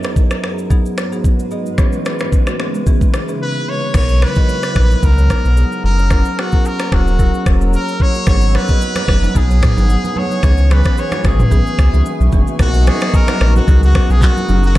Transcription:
Already playing: G#2 G#3 F#4 B4
0.03 F#3 B3 D#4 G#4 B4, finger snap, cross-stick, shaker
0.16 kick, shaker
0.31 finger snap, cross-stick, shaker
0.43 F#3 B3 D#4 G#4, finger snap, cross-stick
0.58 shaker
0.70 F#3 B3 D#4 G#4, kick, shaker
0.86 shaker
0.98 E4 C#5, finger snap, cross-stick, shaker
1.12 F#3 B3 D#4 G#4, shaker
1.24 kick, shaker
1.39 D#4 B4, shaker
1.51 F#3 B3 D#4 F#4 G#4 D#5, shaker
1.66 shaker
1.78 C#3 E3 B3 C#4 E4 G#4 C#5, finger snap, kick, cross-stick, shaker
1.92 shaker
2.05 D#4 B4, finger snap, cross-stick, shaker
2.19 E3 B3 C#4 G#4, finger snap, cross-stick, shaker
2.32 kick, shaker
2.47 A#3 F#4, finger snap, cross-stick, shaker
2.59 E3 B3 C#4 G#4, finger snap, cross-stick
2.75 B3 G#4, shaker
2.86 E3 B3 C#4 E4 G#4 B4, kick, shaker
3.01 kick, shaker
3.14 B3 G#4, finger snap, cross-stick, shaker
3.28 E3 B3 C#4 D#4 G#4 B4, shaker
3.42 B4
3.69 C#5
3.94 B1 F#3 B3 D#4 A#4 C#5 F#5 A#5 D#6, finger snap, kick, cross-stick, crash, shaker
4.09 shaker
4.22 E4 B4 C#5, finger snap, cross-stick
4.35 F#3 B3 D#4 F#4 A#4 D#5, kick, shaker
4.49 F#4 C#5, shaker
4.63 finger snap, cross-stick, shaker
4.75 A#1 F#3 B3 D#4 A#4 B4, finger snap, kick, cross-stick
4.91 shaker
5.03 C#2 F#3 B3 D#4 A#4, kick, shaker
5.18 E4 C#5, shaker
5.30 D#4 B4, finger snap, kick, cross-stick, shaker
5.45 B1 F#3 B3 D#4 A#4, shaker
5.57 B3 G#4, shaker
5.72 shaker
5.84 F#1 F#3 C#4 E4 A#4 C#5 F#5 E6
5.99 E4 C#5, shaker
6.10 F#3 C#4 E4 A#4, finger snap, kick, cross-stick, shaker
6.25 C#4 A#4, shaker
6.38 B3 F#4 G#4, finger snap, cross-stick
6.52 F#3 C#4 E4 A#4, kick, shaker
6.65 A#4, shaker
6.79 A#3 F#4, finger snap, cross-stick, shaker
6.92 D#1 F#3 C#4 E4 F#4 A#4, finger snap, kick, cross-stick
7.07 C#4 A#4, shaker
7.19 F#3 C#4 E4 G#4 A#4, kick, shaker
7.34 shaker
7.46 E1 A#3 F#4, finger snap, kick, cross-stick, shaker
7.61 F#3 A#3 C#4 E4 F#4 A#4, shaker
7.73 C#4 G#4 A#4, shaker
7.88 shaker
8.00 F#3 C#4 E4 A#4 C#5, kick
8.15 A#3 F#4, shaker
8.27 G#1 F#3 B3 D#4 G#4 B4 C#5 G#5 D#6, finger snap, kick, cross-stick, low conga, shaker
8.41 shaker
8.54 E4 B4 C#5, finger snap, cross-stick, high conga
8.68 F#3 B3 D#4 F#4 G#4 D#5, kick, shaker
8.81 F#4, shaker
8.95 finger snap, cross-stick, high conga, shaker
9.08 F#1 F#3 B3 D#4 G#4 B4, finger snap, kick, cross-stick, low conga
9.23 high conga, shaker
9.35 B1 F#3 B3 D#4 G#4, kick, shaker
9.50 E4 C#5, shaker
9.62 D#4 B4, finger snap, kick, cross-stick, mid tom, shaker
9.77 G#1 F#3 B3 D#4 G#4, high conga, shaker
9.90 B3 G#4, shaker
10.04 high conga, shaker
10.16 F#3 B3 D#4 G#4 B4 C#5, high conga, low conga
10.31 E4 C#5, shaker
10.43 C#2 E3 B3 C#4 G#4 E5 G#5 C#6, finger snap, kick, cross-stick, low conga, shaker
10.58 D#4 B4, shaker
10.70 B3 G#4 B4, finger snap, cross-stick, high conga, shaker
10.84 E3 B3 C#4 G#4, finger snap, kick, cross-stick, shaker
10.98 C#5, shaker
11.12 A#3 F#4, finger snap, cross-stick, high conga, shaker
11.24 G#1 E3 B3 C#4 G#4, finger snap, kick, cross-stick, low conga, shaker
11.39 D#4 B4, mid tom, high conga, shaker
11.51 B1 E3 B3 C#4 G#4, kick, shaker
11.67 shaker
11.79 C#2 F#4, finger snap, kick, cross-stick, shaker
11.93 C#2 E3 A#3 B3 C#4 F#4 G#4, high conga, shaker
12.06 B3 G#4, shaker
12.20 B1, high conga, shaker
12.32 F#1 E3 B3 C#4 D#4 G#4 B4, kick, high conga, low conga, shaker
12.47 A#3 F#4, shaker
12.59 B1 F#3 B3 D#4 F#4 A#4 F#5 A#5 D#6, finger snap, kick, cross-stick, low conga, shaker
12.74 D#4 B4, shaker
12.87 C#4 G#4 A#4, finger snap, cross-stick, high conga, shaker
13.00 F#3 B3 D#4 A#4, finger snap, cross-stick, shaker
13.14 A#4, kick, shaker
13.28 D#4 B4, finger snap, cross-stick, high conga, shaker
13.40 A#1 F#3 B3 D#4 A#4, finger snap, cross-stick, low conga
13.56 C#4 F#4 A#4, high conga, shaker
13.67 C#2 F#3 B3 D#4 G#4 A#4, kick, shaker
13.83 F#4, shaker
13.95 C#4 A#4, finger snap, kick, cross-stick
14.09 B1 F#3 B3 D#4 G#4 A#4, high conga, shaker
14.22 A#3 F#4, kick, clap, shaker
14.37 high conga, shaker
14.48 F#1 F#3 C#4 E4 F#4 G#4 A#4 C#5 F#5 E6, high conga, low conga, shaker
14.64 F#4, shaker

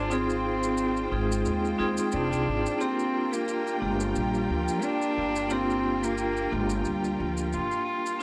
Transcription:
Already playing: G#1 C4 D4 F4 C5
0.10 C4 D#4 F4 G#4 G5, maracas
0.30 maracas
0.63 maracas
0.77 maracas
0.97 maracas
1.11 G#1 G#3 C4 D#4 F4 G#4
1.32 maracas
1.45 D#2, maracas
1.65 maracas
1.78 D#2 C4 D#4 F4 G#4
1.97 maracas
2.12 F1 D4, maracas
2.31 C2 C4 D#4 F4 G#4, maracas
2.48 G#1
2.66 maracas
2.79 A#3 C4 D4 F4 G4 A#4, maracas
2.99 maracas
3.33 A#3, maracas
3.48 maracas
3.67 maracas
3.80 G1 G#3 A#3 D4 F4 G4
4.00 maracas
4.16 A#1 G3, maracas
4.34 maracas
4.50 D2 F3
4.68 maracas
4.82 D4, maracas
5.02 maracas
5.17 G1
5.36 maracas
5.49 A#3 C4 D4 F4 G4, maracas
5.70 maracas
6.03 A#3, maracas
6.18 maracas
6.37 maracas
6.50 G1 G#3 A#3 D4 F4 G4
6.70 maracas
6.85 D2 G3, maracas
7.04 maracas
7.20 D2 F3
7.37 maracas
7.53 G1 F4, maracas
7.72 maracas
8.06 maracas
8.19 C4 D#4 C5 G#5

